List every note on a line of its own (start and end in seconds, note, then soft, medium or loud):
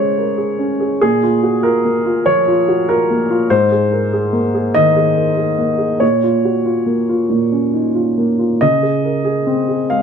0.00 1.03 C#3 soft
0.00 1.04 G#3 soft
0.00 0.59 C#4 soft
0.00 0.38 G#4 soft
0.00 0.18 A#4 soft
0.00 1.03 C5 medium
0.00 1.02 C#5 medium
0.18 0.38 A#4 soft
0.38 0.71 G#4 soft
0.59 0.93 C#4 soft
0.80 1.00 G#4 soft
1.01 2.24 A#2 soft
1.01 1.65 G#4 medium
1.23 1.56 F4 soft
1.43 1.64 F#4 soft
1.63 1.97 F4 soft
1.63 2.26 A#4 medium
1.85 2.18 A#3 soft
2.06 2.39 F4 soft
2.26 2.59 F3 soft
2.26 2.88 C#5 medium
2.48 2.81 F4 soft
2.68 2.89 F#4 soft
2.89 3.22 F4 soft
2.89 3.51 A#4 medium
3.10 3.43 A#3 soft
3.31 3.51 F4 soft
3.50 4.71 G#2 soft
3.50 4.74 C5 medium
3.72 4.05 G#4 soft
3.92 4.12 A#4 soft
4.13 4.46 G#4 soft
4.33 4.66 A#3 soft
4.55 4.88 G#4 soft
4.74 5.08 D#3 soft
4.74 6.01 D#5 medium
4.96 5.30 G#4 soft
5.16 5.37 A#4 soft
5.37 5.71 G#4 soft
5.58 5.92 A#3 soft
5.78 6.01 G#4 soft
6.00 7.26 A#2 soft
6.00 8.28 C#5 medium
6.24 6.58 F4 soft
6.45 6.66 F#4 soft
6.66 7.00 F4 soft
6.86 7.21 A#3 soft
7.09 7.44 F4 soft
7.30 8.57 A#2 soft
7.52 7.87 C#4 soft
7.74 7.96 D#4 soft
7.95 8.30 F4 soft
8.18 8.52 A#3 soft
8.39 8.61 F4 soft
8.61 9.86 C#3 soft
8.61 9.89 D#5 medium
8.83 9.17 G#4 soft
9.04 9.26 A#4 soft
9.25 9.59 G#4 soft
9.47 9.81 C4 soft
9.69 10.02 G#4 soft
9.90 10.03 G#3 soft
9.90 10.03 F5 medium